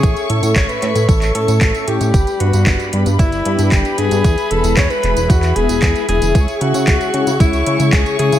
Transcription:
<<
  \new Staff \with { instrumentName = "String section" } { \time 4/4 \key e \major \tempo 4 = 114 << { <cis'' cis'''>1 | <b' b''>1~ | <b' b''>1 | <cis'' cis'''>1 | } \\ { <a' e''>1 | <g d''>1 | <gis' e''>1~ | <gis' e''>1 | } >> }
  \new Staff \with { instrumentName = "Alto saxophone" } { \time 4/4 \key e \major gis'8 a'8 cis''16 b'8. a'8 a'4 g'8~ | g'8 fis'4 r8 e'4 g'8 gis'8~ | gis'8 a'8 cis''16 b'8. fis'8 gis'4 gis'8~ | gis'8 fis'4. e'4 gis'8 gis'8 | }
  \new Staff \with { instrumentName = "Analog polysynth" } { \time 4/4 \key e \major r8 <a, a cis' e' a'>4 <a, a cis' e' a'>8 r8 <a, a cis' e' a'>4 <a cis' e' a'>8 | r8 <g, g b d' b'>4 <g, g b d' g'>8 r8 <g, g b d' g'>4 <g b d' g'>8 | r8 <gis b e' gis'>4 <gis b e' gis'>8 r8 <gis b e' gis'>4 <cis gis b e' gis'>8 | r8 <cis gis cis' e' gis'>4 <cis gis cis' e' gis'>8 r8 <cis gis cis' e' gis'>4 <gis cis' e' gis'>8 | }
  \new Staff \with { instrumentName = "Analog synth bass" } { \clef bass \time 4/4 \key e \major a,,16 r16 a,16 a,16 a,,16 r16 a,16 a,16 a,,8 a,16 a,16 a,,16 r16 a,16 a,16 | g,,16 r16 g,16 g,16 g,,16 r16 g,16 g,16 g,,8 g,16 g,16 g,,16 r16 g,16 g,16 | e,16 r16 e,,16 e,,16 e,16 r16 e,,16 e,,16 e,8 e,,16 e,,16 e,16 r16 e,,16 e,,16 | cis,16 r16 cis16 cis16 cis,16 r16 cis16 cis16 cis,8 cis16 cis16 cis,16 r16 cis16 cis16 | }
  \new DrumStaff \with { instrumentName = "Drums" } \drummode { \time 4/4 <hh bd tamb>16 <hh tamb>16 hh16 <hh tamb>16 <hc hh bd tamb>16 <hh tamb>16 <hc hh>16 <hh tamb>16 <hh bd tamb>16 <hc hh tamb>16 hh16 <hh tamb>16 <hc hh bd tamb>16 <hh tamb>16 hh16 <hh tamb>16 | <hh bd tamb>16 <hh tamb>16 hh16 <hh tamb>16 <hc hh bd tamb>16 <hh tamb>16 hh16 <hh tamb>16 <hh bd tamb>16 <hh tamb>16 hh16 <hh tamb>16 <hc hh bd tamb>16 <hh tamb>16 hh16 <hh tamb>16 | <hh bd tamb>16 <hh tamb>16 hh16 <hh tamb>16 <hc hh bd tamb>16 <hh tamb>16 <hc hh>16 <hh tamb>16 <hh bd tamb>16 <hc hh tamb>16 hh16 <hh tamb>16 <hc hh bd tamb>16 <hh tamb>16 hh16 <hh tamb>16 | <hh bd tamb>16 <hh tamb>16 hh16 <hh tamb>16 <hc hh bd tamb>16 <hh tamb>16 hh16 <hh tamb>16 <hh bd tamb>16 <hh tamb>16 hh16 <hh tamb>16 <hc hh bd tamb>16 <hh tamb>16 hh16 <hh tamb>16 | }
>>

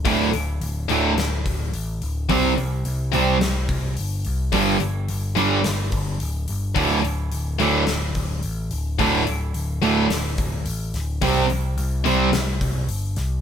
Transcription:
<<
  \new Staff \with { instrumentName = "Distorted electric guitar" } { \clef bass \time 4/4 \key c \major \tempo 4 = 108 <d, a, d>8 r4 <d, a, d>8 r2 | <c g c'>8 r4 <c g c'>8 r2 | <g, d g>8 r4 <g, d g>8 r2 | <d, a, d>8 r4 <d, a, d>8 r2 |
<d, a, d>8 r4 <d, a, d>8 r2 | <c g c'>8 r4 <c g c'>8 r2 | }
  \new Staff \with { instrumentName = "Overdriven electric guitar" } { \clef bass \time 4/4 \key c \major <d, a, d>8 r4 <d, a, d>8 r2 | <c g c'>8 r4 <c g c'>8 r2 | <g, d g>8 r4 <g, d g>8 r2 | <d, a, d>8 r4 <d, a, d>8 r2 |
<d, a, d>8 r4 <d, a, d>8 r2 | <c g c'>8 r4 <c g c'>8 r2 | }
  \new Staff \with { instrumentName = "Picked electric bass" } { \clef bass \time 4/4 \key c \major d,,8 d,,8 d,,8 d,,8 d,,8 d,,8 a,,8 d,,8 | c,8 c,8 c,8 c,8 c,8 c,8 g,,8 c,8 | g,,8 g,,8 g,,8 g,,8 g,,8 g,,8 d,,8 g,,8 | d,,8 d,,8 d,,8 d,,8 d,,8 d,,8 a,,8 d,,8 |
d,,8 d,,8 d,,8 d,,8 d,,8 d,,8 a,,8 d,,8 | c,8 c,8 c,8 c,8 c,8 c,8 g,,8 c,8 | }
  \new DrumStaff \with { instrumentName = "Drums" } \drummode { \time 4/4 <hho bd>8 hho8 hho8 hho8 <hho sn>8 <hho bd>8 hho8 hho8 | <hho bd>8 hho8 hho8 hho8 <hho sn>8 <hho bd>8 hho8 hho8 | <hho bd>8 hho8 hho8 hho8 <hho sn>8 <hho bd>8 hho8 hho8 | <hho bd>8 hho8 hho8 hho8 <hho sn>8 <hho bd>8 hho8 hho8 |
<hho bd>8 hho8 hho8 hho8 <hho sn>8 <hho bd>8 hho8 <hho sn>8 | <hho bd>8 hho8 hho8 hho8 <hho sn>8 <hho bd>8 hho8 <hho sn>8 | }
>>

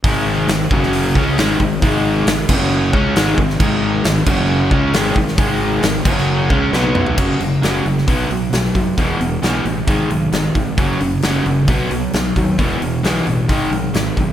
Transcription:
<<
  \new Staff \with { instrumentName = "Overdriven electric guitar" } { \clef bass \time 4/4 \key gis \minor \tempo 4 = 134 <gis, dis gis>4 <gis, dis>8 <fis, cis fis>4 <cis gis cis'>8 <gis, dis gis>8 <gis, dis>8 | <gis, dis gis>4 <gis, dis>8 <fis, cis fis>4 <cis gis cis'>8 <gis, dis gis>8 <gis, dis>8 | <gis, dis gis>4 <gis, dis>8 <fis, cis fis>4 <cis gis cis'>8 <gis, dis gis>8 <gis, dis>8 | <gis, dis gis>4 <gis, dis>8 <fis, cis fis>4 <cis gis cis'>8 <b, fis b>4 |
<fis, cis fis>8 <fis, cis>8 <fis, cis fis>8 <fis, cis>8 <b, fis b>8 <b, fis>8 <b, fis>8 <b, fis>8 | <e, b, e>8 <e, b,>8 <e, b, e>8 <e, b,>8 <gis, dis gis>8 <gis, dis>8 <gis, dis>8 <gis, dis>8 | <fis, cis fis>8 <fis, cis>8 <fis, cis fis>8 <fis, cis>8 <b, fis b>8 <b, fis>8 <b, fis>8 <b, fis>8 | <e, b, e>8 <e, b,>8 <e, b, e>8 <e, b,>8 <gis, dis gis>8 <gis, dis>8 <gis, dis>8 <gis, dis>8 | }
  \new Staff \with { instrumentName = "Fingered electric bass" } { \clef bass \time 4/4 \key gis \minor gis,,4 gis,,8 fis,,4 cis,8 gis,,8 gis,,8 | gis,,4 gis,,8 fis,,4 cis,8 gis,,8 gis,,8 | gis,,4 gis,,8 fis,,4 cis,8 gis,,8 gis,,8 | gis,,4 gis,,8 fis,,4 cis,8 b,,4 |
fis,,8 fis,,8 fis,,8 fis,,8 b,,8 b,,8 b,,8 fis,8 | e,,8 e,,8 b,,8 a,,8 gis,,8 b,,8 gis,,8 gis,,8 | fis,,8 fis,,8 fis,,8 fis,,8 b,,8 b,,8 b,,8 dis,8 | e,,8 e,,8 b,,8 a,,8 gis,,8 b,,8 gis,,8 b,,8 | }
  \new DrumStaff \with { instrumentName = "Drums" } \drummode { \time 4/4 <hho bd>4 <hho sn>8 bd16 sn16 hho8 bd8 <hho sn>8 bd8 | <hho bd>4 <hho sn>8 <cymc bd>8 r8 bd8 <hho sn>8 bd16 sn16 | <cymc bd>4 <hho sn>8 <cymc bd>8 r8 bd8 <hho sn>8 bd16 sn16 | <hho bd>4 <hho sn>8 <cymc bd>16 sn16 r8 bd8 sn16 tommh16 toml16 tomfh16 |
<cymc bd>8 hho8 <hho sn>8 hho16 sn16 <hho bd>8 hho8 <hho sn>16 sn16 <hho bd>8 | <hho bd>8 hho8 <hho sn>8 hho8 <hho bd>8 hho8 <hho sn>8 <hho bd>8 | <hho bd>8 hho8 <hho sn>8 hho8 <hho bd>8 hho8 <hho sn>8 <hho bd>8 | <hho bd>8 hho8 <hho sn>8 hho8 <hho bd>8 hho8 <hho sn>8 <hho bd>8 | }
>>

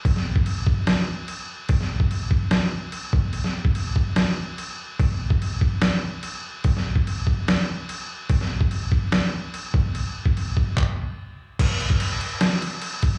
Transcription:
\new DrumStaff \with { instrumentName = "Drums" } \drummode { \time 4/4 \tempo 4 = 146 <cymc bd>16 sn8 bd16 cymc8 bd8 <cymc sn>4 cymc4 | <cymc bd>16 sn8 bd16 cymc8 bd8 <cymc sn>4 cymc8 bd8 | cymc16 sn8 bd16 cymc8 bd8 <cymc sn>4 cymc4 | <cymc bd>8. bd16 cymc8 bd8 <cymc sn>4 cymc4 |
<cymc bd>16 sn8 bd16 cymc8 bd8 <cymc sn>4 cymc4 | <cymc bd>16 sn8 bd16 cymc8 bd8 <cymc sn>4 cymc8 bd8 | cymc8. bd16 cymc8 bd8 <hc bd>4 r4 | <cymc bd>8 cymc16 bd16 cymc8 cymc8 <cymc sn>8 cymc8 cymc8 <cymc bd>8 | }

